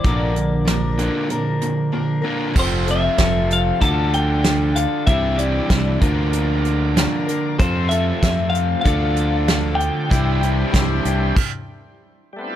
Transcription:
<<
  \new Staff \with { instrumentName = "Clean electric guitar" } { \time 4/4 \key bes \lydian \tempo 4 = 95 d''2. r4 | c''8 e''4 f''8 a''8 g''4 f''8 | e''8 d''4 r2 r8 | c''8 e''4 f''8 f''4. g''8~ |
g''2. r4 | }
  \new Staff \with { instrumentName = "Tonewheel organ" } { \time 4/4 \key bes \lydian r1 | <c' f' a' c''>2 <d' f' a' d''>2 | <d' e' g' c''>4. <d' f' bes' d''>2~ <d' f' bes' d''>8 | <c' f' a' c''>2 <d' f' a' d''>2 |
<d' e' g' c''>2 r2 | }
  \new Staff \with { instrumentName = "Steel-string acoustic guitar" } { \time 4/4 \key bes \lydian <bes, d f bes d' bes'>4 <f bes d' bes'>8 <f bes d' bes'>8 <f bes d' bes'>4 <f bes d' bes'>8 <f bes d' bes'>8 | <f c' f' a'>8 <c' f' a'>8 <f c' f' a'>4 <d f d' f' a'>4 <f d' f' a'>8 <d' f' a'>8 | <c g d' e' g'>8 <d' e' g'>8 <g d' e' g'>8 <d f bes d' bes'>4. <f bes d' bes'>8 <bes d' bes'>8 | <f c' f' a'>8 <c' f' a'>8 <f c' f' a'>4 <d f d' f' a'>4 <f d' f' a'>4 |
<c g d' e' g'>8 <d' e' g'>8 <g d' e' g'>8 <d' e' g'>8 r2 | }
  \new Staff \with { instrumentName = "Overdriven electric guitar" } { \clef bass \time 4/4 \key bes \lydian <bes, d bes>8 <bes, d>8 <bes, d>8 <bes, d bes>8 <bes, d>8 <bes, d>8 <bes, d>8 <bes, d bes>8 | <f, c f a c' f'>2 <d a d' f'>2 | <c e g c' e'>4. <d bes d' f'>2~ <d bes d' f'>8 | <f, c f a c' f'>2 <d a d' f'>2 |
<c e g c' e'>2 r2 | }
  \new Staff \with { instrumentName = "Fingered electric bass" } { \clef bass \time 4/4 \key bes \lydian bes,,2 r2 | f,,4 f,,4 d,2 | c,4 c,8 d,2 r8 | f,4 f,4 d,2 |
c,4 c,8 c,8 r2 | }
  \new DrumStaff \with { instrumentName = "Drums" } \drummode { \time 4/4 <hh bd>8 hh8 <hh sn>8 hh8 hh8 hh8 r4 | <cymc bd>8 hh8 <hh bd sn>8 hh8 <hh bd>8 hh8 <hh sn>8 hh8 | <hh bd>8 hh8 <hh bd sn>8 <hh bd>8 hh8 hh8 <hh sn>8 hh8 | <hh bd>8 hh8 <hh bd sn>8 hh8 <hh bd>8 hh8 <hh sn>8 hh8 |
<hh bd>8 hh8 <hh bd sn>8 hh8 <cymc bd>4 r4 | }
>>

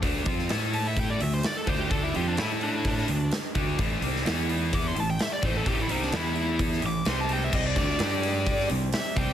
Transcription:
<<
  \new Staff \with { instrumentName = "Lead electric guitar" } { \time 4/4 \key a \minor \tempo 4 = 128 r4. a''16 e''16 g''16 d''16 e''16 c''16 d''16 a'16 c''16 g'16 | a'16 e'16 g'16 d'16 e'16 r16 d'8 d'4 r4 | r2 d'''16 c'''16 a''16 g''16 e''16 d''16 c''16 a'16 | g'16 e'16 dis'16 d'16 e'4 r8 d'''8 c'''16 a''16 g''16 e''16 |
dis''16 d''16 d''2 r8 e''8 g''8 | }
  \new Staff \with { instrumentName = "Tonewheel organ" } { \time 4/4 \key a \minor r1 | r1 | r1 | r1 |
<c' g' d''>4 <g d' a'>4. <c' g' d''>4. | }
  \new Staff \with { instrumentName = "Distorted electric guitar" } { \time 4/4 \key a \minor <d a d'>8 <f c' f'>8 <a e' a'>4. <d a>8 r8 <d a d'>8 | <d a d'>8 <f c' f'>8 <a e' a'>4. <d a>8 r8 <d a d'>8 | <a, e a>8 <c g c'>8 <e b e'>4. <a, e>8 r8 <a, e a>8 | <a, e a>8 <c g c'>8 <e b e'>4. <a, e>8 <c g c'>4 |
<c g c'>8 <d a d'>8 <g d' g'>4. <c g>8 r8 <c g c'>8 | }
  \new Staff \with { instrumentName = "Distorted electric guitar" } { \time 4/4 \key a \minor <d a d'>8 <f c' f'>8 <a e' a'>4. <d a>8 r8 <d a d'>8 | <d a d'>8 <f c' f'>8 <a e' a'>4. <d a>8 r8 <d a d'>8 | <a, e a>8 <c g c'>8 <e b e'>4. <a, e>8 r8 <a, e a>8 | <a, e a>8 <c g c'>8 <e b e'>4. <a, e>8 <c g c'>4 |
<c g c'>8 <d a d'>8 <g d' g'>4. <c g>8 r8 <c g c'>8 | }
  \new Staff \with { instrumentName = "Fingered electric bass" } { \clef bass \time 4/4 \key a \minor d,8 f,8 a,4. d,8 r8 d,8 | d,8 f,8 a,4. d,8 r8 d,8 | a,,8 c,8 e,4. a,,8 r8 a,,8 | a,,8 c,8 e,4. a,,8 c,4 |
c,8 d,8 g,4. c,8 r8 c,8 | }
  \new DrumStaff \with { instrumentName = "Drums" } \drummode { \time 4/4 <hho bd>8 <hho bd>16 sn16 <hho sn>8 hho8 <hho bd>8 hho8 <hho sn>8 <hho bd>8 | <hho bd>8 hho8 <hho sn>8 hho8 <hho bd>16 sn16 hho8 <hho sn>8 <hho bd>8 | <hho bd>8 hho16 sn16 <hho sn>8 hho8 <hho bd>8 hho8 <hho sn>8 <hho bd>8 | <hho bd>8 hho16 sn16 <hho sn>8 hho8 <hho bd>16 sn16 hho8 <hho sn>8 hho8 |
<cymc bd>8 <hho bd>16 sn16 <hho sn>8 hho8 <hho bd>16 sn16 hho8 <hho sn>8 <hho bd>8 | }
>>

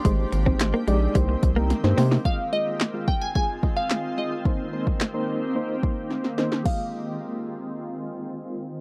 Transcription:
<<
  \new Staff \with { instrumentName = "Synth pluck" } { \time 4/4 \key f \minor \tempo 4 = 109 c'''2.~ c'''8 r8 | f''8 ees''4 g''16 aes''16 aes''8. f''8. ees''8~ | ees''2. r4 | f''1 | }
  \new Staff \with { instrumentName = "Synth keys" } { \time 4/4 \key f \minor <aes ees' g' c''>8 r16 <aes ees' g' c''>8 r16 <aes ees' g' d''>8 <bes ees' g' c''>8 r16 <bes ees' g' bes'>16 r16 <bes ees' g' c''>8 r16 | <aes f' ees''>16 r16 <aes f' ees''>8 r16 <aes f' f''>8 r16 <aes f' aes'>16 r16 <aes f' ees''>8. r16 <aes f' ees''>16 r16 | <bes ees' c''>16 r16 <bes ees' c''>8 r16 <bes ees' c''>8 r16 <bes ees' c''>16 r16 <bes ees' c''>8. r16 <bes ees' c''>16 r16 | <aes f' ees''>1 | }
  \new Staff \with { instrumentName = "Ambient pad" } { \time 4/4 \key f \minor << { g'1 | <aes f'>1 | <bes g'>1 | <ees aes c' f'>1 | } \\ { <ees c'>1 | <ees c'>1~ | <ees c'>1 | r1 | } >> }
  \new Staff \with { instrumentName = "Clean electric guitar" } { \time 4/4 \key f \minor aes16 r8 c'16 r16 bes16 aes16 r16 g16 r8 bes16 r8 c'16 ees'16 | r1 | r1 | r1 | }
  \new Staff \with { instrumentName = "Analog synth bass" } { \clef bass \time 4/4 \key f \minor aes,,8 aes,,4 bes,,8 c,8 c,8. g,16 c8 | r1 | r1 | r1 | }
  \new DrumStaff \with { instrumentName = "Drums" } \drummode { \time 4/4 <hh bd>8 hh16 bd16 <hc hh sn>8 hh8 <hh bd>8 <hh bd>8 <hh sn>16 sn16 <hho sn>16 sn16 | bd4 <hc sn>8 bd8 bd8 bd8 <hc sn>4 | bd8. bd16 <hc sn>4 r8 bd8 sn16 sn16 sn16 sn16 | <cymc bd>4 r4 r4 r4 | }
>>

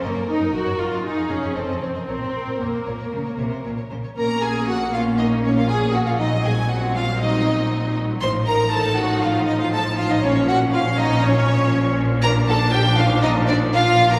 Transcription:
<<
  \new Staff \with { instrumentName = "Violin section" } { \time 4/4 \key bes \minor \tempo 4 = 119 ees''16 des''16 r16 bes'16 ees''16 des''16 ees''16 ees''16 r16 f''16 f''16 ees''16 ees''16 ees''16 des''16 ees''16 | des''16 c''16 r16 bes'16 des''16 c''16 des''16 des''16 r16 des''16 des''16 c''16 des''16 des''16 c''16 des''16 | bes''8 aes''8 ges''8 f''8 ees''8 des''16 f''16 aes''8 ges''16 f''16 | ees''8 aes''8 ges''8 f''8 ees''4. r8 |
c'''8 bes''8 a''8 ges''8 f''8 ees''16 f''16 a''8 f''16 ees''16 | des''8 ges''8 f''8 ees''8 des''4. r8 | \key bes \major bes''8 a''8 g''8 f''8 ees''8 d''8 f''8. bes''16 | }
  \new Staff \with { instrumentName = "Violin section" } { \time 4/4 \key bes \minor bes'2 aes'4 a'8 c''8 | bes'2.~ bes'8 r8 | bes'8 aes'8 ges'8 f'8 ees'8 des'16 f'16 aes'8 ges'16 f'16 | ees'8 aes'8 ges'8 f'8 ees'4. r8 |
c''8 bes'8 a'8 ges'8 f'8 ees'16 f'16 a'8 f'16 ees'16 | des'8 ges'8 f'8 ees'8 des'4. r8 | \key bes \major bes'8 a'8 g'8 f'8 ees'8 d'8 f'8. bes'16 | }
  \new Staff \with { instrumentName = "Viola section" } { \time 4/4 \key bes \minor << { bes8 ees'8 ges'8 f'8 ees'8 des'8 c'4 | c'4 bes2 r4 | des'1 | c'1 |
ees'1 | des'1 | \key bes \major d'1 | } \\ { r1 | r1 | bes1 | ges1 |
f1~ | f1 | f1 | } >> }
  \new Staff \with { instrumentName = "Cello section" } { \clef bass \time 4/4 \key bes \minor ges,16 ges,16 r16 ges,16 ges,16 ges,16 ges,16 ges,16 r16 f,16 f,16 f,16 f,16 f,16 f,16 f,16 | bes,16 bes,16 r16 bes,16 f,8 bes,8 des8 c8 bes,8 des8 | bes,1~ | bes,1 |
a,1 | bes,1~ | \key bes \major bes,1 | }
  \new Staff \with { instrumentName = "Double bass section" } { \clef bass \time 4/4 \key bes \minor ges,,16 r8. ges,,16 r16 ges,,16 r8. f,,16 r16 f,,16 r16 f,,16 r16 | bes,,16 r8. bes,,16 r16 bes,,16 r8. bes,,16 r16 bes,,16 r16 bes,,16 r16 | bes,,1~ | bes,,1 |
a,,1 | bes,,1~ | \key bes \major bes,,1 | }
>>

